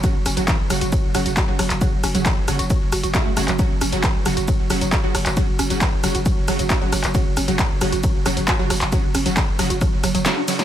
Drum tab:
RD |x-x-x-x-x-x-x-x-|x-x-x-x-x-x-x-x-|x-x-x-x-x-x-x-x-|x-x-x-x-x-x-x-x-|
HH |x-oxx-oxx-oxx-ox|x-oxx-oxx-oxx-ox|x-oxx-oxx-oxx-ox|x-oxx-oxx-oxx-ox|
TB |x-xxx-xxx-xx--xx|x-xxx-xxx-xxx-xx|x-xxx-xxx-xx--xx|x-xxx-xxx-xxx-xx|
SH |x-x-x-x-x-x-x---|x-x-x-x-x-x-x-x-|x-x-x-x-x-x-x---|x-x-x-x-x-x-x-x-|
CP |----x-------x--x|----x-------x--x|----x-------x--x|----x-------x--x|
SD |--r-o-r---r-o-r-|--r-o-r---r-o-r-|--r-o-r---r-o-r-|--r-o-r---r-o-r-|
BD |o---o---o---o---|o---o---o---o---|o---o---o---o---|o---o---o---o---|

RD |x-x-x-x-x-x-x-x-|x-x-x-x-x-x-x-x-|
HH |x-oxx-oxx-oxx-ox|x-oxx-oxx-oxx-ox|
TB |x-xxx-xxx-xxx-xx|x-xxx-xxx-xxx-xx|
SH |x-x-x-x-x-x-x---|x-x-x-x-x-x-x-x-|
CP |----x-------x--x|----x-------x---|
SD |--r-o-r---r-o-r-|--r-o-r-r-r-o-oo|
BD |o---o---o---o---|o---o---o-------|